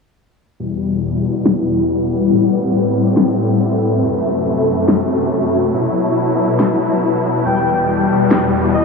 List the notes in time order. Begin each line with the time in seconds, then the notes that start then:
0.60 E2 B2 G3 E4
0.76 B4
0.85 F#5
1.46 snare
2.31 A2 C4 A4
2.78 E5
2.98 B5
3.17 snare
4.03 F#2 C3 A3 F#4
4.74 A5
4.88 snare
5.74 B2 F#3 E4 B4
6.24 B5
6.60 snare
7.45 E2 B2 G3 E4 G5
8.31 snare
8.74 D#5